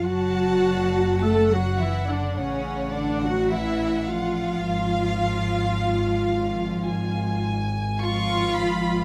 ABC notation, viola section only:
X:1
M:4/4
L:1/16
Q:1/4=53
K:C#phr
V:1 name="Viola section"
F4 A F E D C2 D F E2 ^E2- | ^E8- E2 z2 E4 |]